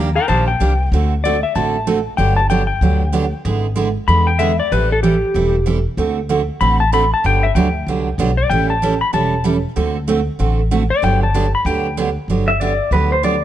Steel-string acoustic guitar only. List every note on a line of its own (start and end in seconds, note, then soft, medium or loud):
0.28 0.49 D#3 medium
0.28 0.49 G3 medium
0.28 0.49 A#3 medium
0.28 0.49 D4 medium
0.28 0.49 G4 medium
0.60 0.71 D#3 medium
0.60 0.72 G3 medium
0.60 0.72 A#3 medium
0.60 0.72 D4 medium
0.60 0.72 G4 medium
0.93 1.13 D3 medium
0.93 1.13 A3 medium
0.93 1.13 C4 medium
0.93 1.13 F#4 medium
0.93 1.13 A4 medium
1.25 1.35 D3 medium
1.25 1.35 A3 medium
1.25 1.36 C4 medium
1.25 1.36 F#4 medium
1.25 1.36 A4 medium
1.55 1.75 D3 medium
1.55 1.76 A3 medium
1.55 1.76 C4 medium
1.55 1.76 F#4 medium
1.55 1.76 A4 medium
1.87 1.98 D3 medium
1.87 1.98 A3 medium
1.87 1.98 C4 medium
1.87 1.98 F#4 medium
1.87 1.98 A4 medium
2.18 2.38 D3 medium
2.18 2.39 F#3 medium
2.18 2.39 B3 medium
2.18 2.39 D4 medium
2.18 2.39 G4 medium
2.50 2.61 D3 medium
2.50 2.61 F#3 medium
2.50 2.61 B3 medium
2.50 2.62 D4 medium
2.50 2.62 G4 medium
2.82 3.02 D3 medium
2.82 3.02 F#3 medium
2.82 3.02 B3 medium
2.82 3.02 D4 medium
2.82 3.03 G4 medium
3.12 3.24 D3 medium
3.12 3.24 F#3 medium
3.12 3.24 B3 medium
3.12 3.25 D4 medium
3.12 3.24 G4 medium
3.45 3.65 D3 medium
3.45 3.65 G#3 medium
3.45 3.65 B3 medium
3.45 3.65 E4 medium
3.45 3.66 G#4 medium
3.76 3.87 D3 medium
3.76 3.87 G#3 medium
3.76 3.88 B3 medium
3.76 3.87 E4 medium
3.76 3.88 G#4 medium
4.08 4.28 D3 medium
4.08 4.29 G#3 medium
4.08 4.29 B3 medium
4.08 4.29 E4 medium
4.08 4.29 G#4 medium
4.39 4.50 D3 medium
4.39 4.50 G#3 medium
4.39 4.51 B3 medium
4.39 4.51 E4 medium
4.39 4.51 G#4 medium
4.72 4.92 E3 medium
4.72 4.92 G3 medium
4.72 4.92 C4 medium
4.72 4.92 E4 medium
4.72 4.92 A4 medium
5.03 5.14 E3 medium
5.03 5.14 G3 medium
5.03 5.14 C4 medium
5.03 5.14 E4 medium
5.03 5.14 A4 medium
5.35 5.55 E3 medium
5.35 5.55 G3 medium
5.35 5.55 C4 medium
5.35 5.55 E4 medium
5.35 5.55 A4 medium
5.66 5.77 E3 medium
5.66 5.77 G3 medium
5.66 5.77 C4 medium
5.66 5.77 E4 medium
5.66 5.78 A4 medium
5.98 6.18 D3 medium
5.98 6.18 A3 medium
5.98 6.18 C4 medium
5.98 6.19 F#4 medium
5.98 6.18 A4 medium
6.29 6.40 D3 medium
6.29 6.40 A3 medium
6.29 6.40 C4 medium
6.29 6.41 F#4 medium
6.29 6.41 A4 medium
6.61 6.81 D3 medium
6.61 6.81 A3 medium
6.61 6.81 C4 medium
6.61 6.81 F#4 medium
6.61 6.81 A4 medium
6.92 7.03 D3 medium
6.92 7.03 A3 medium
6.92 7.03 C4 medium
6.92 7.04 F#4 medium
6.92 7.04 A4 medium
7.24 7.44 D3 medium
7.24 7.44 F#3 medium
7.24 7.44 B3 medium
7.24 7.44 D4 medium
7.24 7.45 G4 medium
7.56 7.67 D3 medium
7.56 7.67 F#3 medium
7.56 7.67 B3 medium
7.56 7.67 D4 medium
7.56 7.67 G4 medium
7.88 8.08 D3 medium
7.88 8.08 F#3 medium
7.88 8.08 B3 medium
7.88 8.08 D4 medium
7.88 8.08 G4 medium
8.19 8.29 D3 medium
8.19 8.30 F#3 medium
8.19 8.30 B3 medium
8.19 8.30 D4 medium
8.19 8.30 G4 medium
8.51 8.70 E3 medium
8.51 8.71 G3 medium
8.51 8.71 C#4 medium
8.51 8.71 E4 medium
8.51 8.71 A4 medium
8.82 8.93 E3 medium
8.82 8.93 G3 medium
8.82 8.93 C#4 medium
8.82 8.93 E4 medium
8.82 8.93 A4 medium
9.13 9.33 E3 medium
9.13 9.33 G3 medium
9.13 9.33 C#4 medium
9.13 9.34 E4 medium
9.13 9.34 A4 medium
9.44 9.55 E3 medium
9.44 9.55 G3 medium
9.44 9.56 C#4 medium
9.44 9.56 E4 medium
9.44 9.56 A4 medium
9.76 9.96 D3 medium
9.76 9.96 A3 medium
9.76 9.96 C4 medium
9.76 9.96 F#4 medium
9.76 9.97 A4 medium
10.07 10.19 D3 medium
10.07 10.19 A3 medium
10.07 10.19 C4 medium
10.07 10.19 F#4 medium
10.07 10.19 A4 medium
10.39 10.59 D3 medium
10.39 10.60 A3 medium
10.39 10.60 C4 medium
10.39 10.60 F#4 medium
10.39 10.60 A4 medium
10.71 10.82 D3 medium
10.71 10.82 A3 medium
10.71 10.82 C4 medium
10.71 10.82 F#4 medium
10.71 10.82 A4 medium
11.02 11.22 D3 medium
11.02 11.23 F#3 medium
11.02 11.23 B3 medium
11.02 11.23 D4 medium
11.02 11.23 G4 medium
11.34 11.45 D3 medium
11.34 11.45 F#3 medium
11.34 11.45 B3 medium
11.34 11.46 D4 medium
11.34 11.45 G4 medium
11.66 11.86 D3 medium
11.66 11.86 F#3 medium
11.66 11.86 B3 medium
11.66 11.86 D4 medium
11.66 11.86 G4 medium
11.97 12.08 D3 medium
11.97 12.08 F#3 medium
11.97 12.08 B3 medium
11.97 12.09 D4 medium
11.97 12.09 G4 medium
12.29 12.49 D3 medium
12.29 12.49 F#3 medium
12.29 12.49 B3 medium
12.29 12.50 D4 medium
12.29 12.50 G4 medium
12.61 12.72 D3 medium
12.61 12.72 F#3 medium
12.61 12.72 B3 medium
12.61 12.72 D4 medium
12.61 12.72 G4 medium
12.92 13.12 D3 medium
12.92 13.12 F#3 medium
12.92 13.12 B3 medium
12.92 13.12 D4 medium
12.92 13.12 G4 medium
13.23 13.34 D3 medium
13.23 13.34 F#3 medium
13.23 13.34 B3 medium
13.23 13.35 D4 medium
13.23 13.35 G4 medium